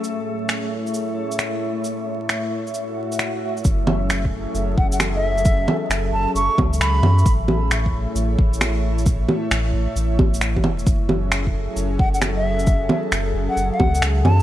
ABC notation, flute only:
X:1
M:4/4
L:1/16
Q:"Swing 16ths" 1/4=133
K:F#m
V:1 name="Flute"
z16 | z16 | z8 z2 f f z e3- | e3 z3 a2 c'2 z2 b4 |
z16 | z16 | z8 z2 f f z e3- | e3 z4 f2 f3 z2 a2 |]